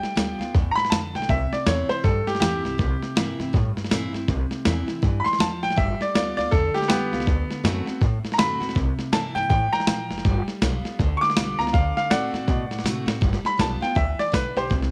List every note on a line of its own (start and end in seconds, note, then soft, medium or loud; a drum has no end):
0.00 0.14 G3 medium
0.00 0.52 G5 loud
0.00 muted upright bass stroke medium
0.00 snare soft
0.15 0.38 D2 medium
0.15 0.38 G3 medium
0.15 0.39 B3 medium
0.15 0.38 F4 medium
0.15 snare loud
0.15 hi-hat pedal medium
0.38 0.53 D2 medium
0.38 0.54 B3 soft
0.38 0.53 F4 medium
0.38 snare soft
0.54 0.75 E2 medium
0.54 0.90 A2 medium
0.54 kick loud
0.54 snare soft
0.71 0.74 A#5 medium
0.75 0.90 B5 loud
0.75 muted upright bass stroke medium
0.75 snare soft
0.85 snare soft
0.90 1.13 F2 loud
0.90 1.28 D3 medium
0.90 1.13 A5 medium
0.90 snare loud
0.90 hi-hat pedal loud
1.14 1.28 B1 medium
1.14 1.29 G5 medium
1.14 snare soft
1.22 snare soft
1.29 1.51 C2 medium
1.29 2.01 C3 medium
1.29 1.52 E5 medium
1.29 kick loud
1.29 snare soft
1.53 1.66 D5 medium
1.53 snare soft
1.66 1.89 E2 medium
1.66 1.88 E3 medium
1.66 1.89 A#3 medium
1.66 1.89 C4 medium
1.66 1.88 E4 medium
1.66 1.89 C#5 medium
1.66 snare loud
1.66 hi-hat pedal medium
1.89 2.04 C4 soft
1.89 2.03 E4 medium
1.89 2.03 C5 medium
1.89 muted upright bass stroke medium
1.89 snare soft
2.04 2.76 G2 medium
2.04 2.26 G2 loud
2.04 2.26 A4 medium
2.04 kick loud
2.04 snare soft
2.27 2.39 G4 loud
2.27 snare soft
2.35 snare soft
2.40 2.63 E2 medium
2.40 2.63 E3 medium
2.40 2.63 A#3 medium
2.40 2.64 C4 loud
2.40 2.62 E4 loud
2.40 3.49 G4 loud
2.40 snare loud
2.40 hi-hat pedal medium
2.63 2.78 C2 medium
2.63 2.79 C4 medium
2.63 2.78 E4 medium
2.63 snare soft
2.78 3.01 C2 medium
2.78 3.50 C3 medium
2.78 kick loud
2.78 snare soft
3.02 muted upright bass stroke medium
3.02 snare soft
3.15 3.38 G2 medium
3.15 3.38 E3 medium
3.15 3.38 A#3 medium
3.15 3.38 C4 medium
3.15 3.38 E4 medium
3.15 snare loud
3.15 hi-hat pedal medium
3.39 3.53 G2 medium
3.39 3.54 C4 medium
3.39 3.53 E4 medium
3.39 snare soft
3.53 4.25 G2 medium
3.53 3.76 A2 loud
3.53 kick loud
3.53 snare soft
3.77 muted upright bass stroke medium
3.77 snare soft
3.84 snare soft
3.89 4.13 A#2 loud
3.89 4.12 E3 medium
3.89 4.13 A#3 medium
3.89 4.13 C4 loud
3.89 4.11 E4 loud
3.89 snare loud
3.89 hi-hat pedal loud
4.12 4.28 G2 loud
4.12 4.28 C4 soft
4.12 4.27 E4 medium
4.12 snare soft
4.28 4.50 C2 loud
4.28 5.00 C3 loud
4.28 kick loud
4.28 snare soft
4.51 muted upright bass stroke medium
4.51 snare soft
4.65 4.88 E2 medium
4.65 4.87 E3 medium
4.65 4.88 A#3 medium
4.65 4.88 C4 medium
4.65 4.85 E4 medium
4.65 snare loud
4.65 hi-hat pedal medium
4.86 5.03 C4 soft
4.86 5.01 E4 medium
4.86 muted upright bass stroke medium
4.86 snare soft
5.02 5.25 G2 medium
5.02 5.38 E3 medium
5.02 kick loud
5.02 snare soft
5.20 5.22 B5 medium
5.24 5.39 C6 loud
5.24 muted upright bass stroke medium
5.24 snare soft
5.33 snare soft
5.39 5.63 E2 loud
5.39 5.75 F3 medium
5.39 5.62 A5 medium
5.39 snare loud
5.39 hi-hat pedal loud
5.63 5.77 A1 medium
5.63 5.77 G5 loud
5.63 snare soft
5.70 snare soft
5.76 6.00 G1 medium
5.76 6.13 G3 medium
5.76 6.00 E5 medium
5.76 kick loud
5.76 snare soft
6.00 6.14 D5 medium
6.00 muted upright bass stroke medium
6.00 snare soft
6.14 6.37 D2 medium
6.14 6.36 G3 medium
6.14 6.37 B3 medium
6.14 6.35 F4 medium
6.14 6.36 D5 medium
6.14 snare loud
6.14 hi-hat pedal medium
6.37 6.52 D2 medium
6.37 6.52 B3 soft
6.37 6.51 F4 medium
6.37 6.51 D5 loud
6.37 snare soft
6.51 6.74 E2 loud
6.51 7.24 D3 medium
6.51 6.74 A4 loud
6.51 kick loud
6.51 snare soft
6.74 6.87 G4 loud
6.74 snare soft
6.82 snare soft
6.88 7.11 F2 medium
6.88 7.11 G3 medium
6.88 7.97 B3 medium
6.88 7.12 B3 medium
6.88 7.10 F4 loud
6.88 7.25 G4 loud
6.88 snare loud
6.88 hi-hat pedal loud
7.12 7.26 C2 medium
7.12 7.27 B3 soft
7.12 7.26 F4 medium
7.12 snare soft
7.20 snare soft
7.26 7.48 D2 medium
7.26 7.62 D3 medium
7.26 kick loud
7.26 snare soft
7.49 muted upright bass stroke medium
7.49 snare soft
7.63 7.86 F#2 medium
7.63 7.86 D3 medium
7.63 7.86 A3 medium
7.63 7.86 C4 medium
7.63 7.84 F#4 medium
7.63 snare loud
7.63 hi-hat pedal medium
7.86 8.01 C4 soft
7.86 8.00 F#4 medium
7.86 snare soft
8.01 8.73 A2 medium
8.01 8.23 A2 loud
8.01 kick loud
8.01 snare soft
8.23 muted upright bass stroke medium
8.23 snare soft
8.32 8.37 A#5 medium
8.32 snare soft
8.37 8.60 F#2 loud
8.37 8.60 D3 medium
8.37 8.60 A3 loud
8.37 8.61 C4 loud
8.37 8.59 F#4 loud
8.37 8.75 B5 loud
8.37 snare loud
8.37 hi-hat pedal medium
8.60 8.75 D2 medium
8.60 8.76 C4 medium
8.60 8.75 F#4 medium
8.60 snare soft
8.69 snare soft
8.75 8.97 C2 loud
8.75 9.47 C3 medium
8.75 kick loud
8.75 snare soft
8.98 muted upright bass stroke medium
8.98 snare soft
9.12 9.34 G2 medium
9.12 9.48 E3 medium
9.12 9.49 A#3 medium
9.12 9.49 C4 medium
9.12 9.49 E4 medium
9.12 9.35 A5 medium
9.12 snare loud
9.12 hi-hat pedal medium
9.35 9.49 G2 medium
9.35 9.48 G5 loud
9.35 snare soft
9.50 9.72 A2 loud
9.50 9.86 E3 medium
9.50 9.71 G5 loud
9.50 kick loud
9.50 snare soft
9.73 10.43 G5 loud
9.73 10.23 A#5 loud
9.73 snare soft
9.80 snare soft
9.87 10.09 A#2 medium
9.87 10.23 F3 medium
9.87 snare loud
9.87 hi-hat pedal medium
10.10 10.24 F1 medium
10.10 snare soft
10.18 snare soft
10.25 10.47 G1 medium
10.25 10.60 G3 loud
10.25 kick loud
10.25 snare soft
10.48 snare soft
10.61 10.84 B1 medium
10.61 10.97 G3 medium
10.61 10.98 B3 medium
10.61 10.99 F4 medium
10.61 snare loud
10.61 hi-hat pedal medium
10.84 muted upright bass stroke medium
10.84 snare soft
10.99 11.21 D2 loud
10.99 11.71 D3 loud
10.99 kick loud
10.99 snare soft
11.17 11.19 C#6 medium
11.21 11.58 D6 loud
11.21 snare soft
11.30 snare soft
11.36 11.58 B1 loud
11.36 11.58 G3 medium
11.36 11.59 B3 medium
11.36 11.58 F4 loud
11.36 snare loud
11.36 hi-hat pedal loud
11.59 11.73 C#2 medium
11.59 11.74 B3 soft
11.59 11.73 F4 medium
11.59 11.73 A#5 medium
11.59 snare soft
11.67 snare soft
11.73 11.96 D2 medium
11.73 12.09 D3 medium
11.73 11.95 F5 medium
11.73 kick loud
11.73 snare soft
11.97 12.11 F5 medium
11.97 snare soft
12.10 12.32 A2 loud
12.10 12.32 D3 medium
12.10 12.33 A3 medium
12.10 12.34 C4 medium
12.10 12.33 F#4 medium
12.10 12.81 D5 medium
12.10 12.83 F#5 loud
12.10 snare loud
12.10 hi-hat pedal medium
12.33 12.47 A2 medium
12.33 12.49 C4 soft
12.33 12.48 F#4 medium
12.33 snare soft
12.48 13.19 A2 medium
12.48 12.70 B2 medium
12.48 kick loud
12.48 snare soft
12.70 muted upright bass stroke medium
12.70 snare soft
12.79 snare soft
12.84 13.06 C3 loud
12.84 13.06 D3 medium
12.84 13.07 A3 loud
12.84 13.07 C4 medium
12.84 13.05 F#4 loud
12.84 snare medium
12.84 hi-hat pedal loud
13.06 13.21 A2 medium
13.06 13.22 C4 soft
13.06 13.21 F#4 medium
13.06 snare medium
13.21 13.43 G1 medium
13.21 13.56 G3 medium
13.21 kick loud
13.21 snare soft
13.33 snare soft
13.43 13.59 B5 medium
13.43 muted upright bass stroke medium
13.43 snare soft
13.57 13.80 B1 medium
13.57 13.80 G3 medium
13.57 13.81 B3 medium
13.57 13.79 F4 medium
13.57 13.82 A5 medium
13.57 kick medium
13.57 snare loud
13.57 hi-hat pedal medium
13.81 13.96 B3 soft
13.81 13.95 F4 medium
13.81 13.96 G5 medium
13.81 snare soft
13.95 14.18 D2 loud
13.95 14.31 E3 medium
13.95 14.19 E5 medium
13.95 kick loud
13.95 snare soft
14.19 14.33 D5 loud
14.19 snare soft
14.32 14.56 B1 loud
14.32 14.69 D3 medium
14.32 14.56 B4 medium
14.32 kick loud
14.32 snare loud
14.32 hi-hat pedal medium
14.56 14.70 B1 medium
14.56 14.70 G4 medium
14.56 14.71 C5 medium
14.56 snare soft
14.70 14.91 C2 loud
14.70 14.91 C3 medium
14.70 kick loud
14.70 snare soft
14.83 snare soft